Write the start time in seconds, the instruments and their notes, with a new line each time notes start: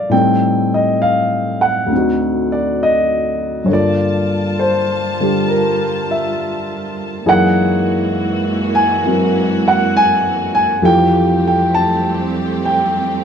Already playing: grand piano A#2 E3 F3 G3 C4 D4 A4 A#4 D5 E5 F5
0.09 grand piano A2 G3 C4 G5
0.14 grand piano D#4 A4
0.74 grand piano D#5
1.02 grand piano F5
1.61 grand piano F#5
1.86 grand piano D2 D3
1.92 grand piano C4 D#4
1.97 grand piano F#4
2.52 grand piano D5
2.83 grand piano D#5
3.64 grand piano G2 D3 C#5
3.68 string section G3 F4 A5, grand piano A#3
3.72 grand piano F4 D5
4.59 grand piano C5
5.20 grand piano D3 G3 D4 G4
5.48 grand piano A#4
6.11 grand piano E5
7.26 grand piano F#2 E3 A#3 D#4 G#4 F#5, string section E3 G#3 A#3 F#4
8.75 grand piano G#5
9.06 grand piano F#3 C4 E4 A#4
9.68 grand piano F#5
9.97 grand piano G#5
10.55 grand piano G#5
10.82 grand piano F2 E3 F3 A3 G4 G5, string section G3 A3 C4 G4
11.47 grand piano G5
11.74 grand piano A5
12.65 grand piano G5